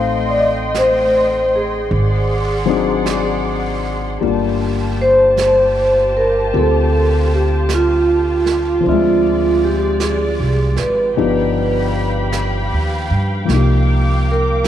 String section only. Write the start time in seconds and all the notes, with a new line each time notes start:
Already playing: A3 D#5 G5 C6
1.88 G#4 D5 F#5
4.23 F4 G4 A5
8.82 G#3 D5
11.16 G4 F5 G5 B5
13.50 A#3 D6